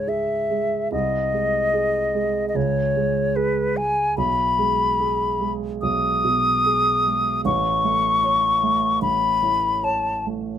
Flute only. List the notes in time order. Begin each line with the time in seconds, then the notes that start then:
Already playing: C#5
0.09 E5
0.92 D#5
2.49 D#5
2.56 C#5
3.36 B4
3.77 G#5
4.18 B5
5.82 D#6
7.46 C#6
9.02 B5
9.84 A5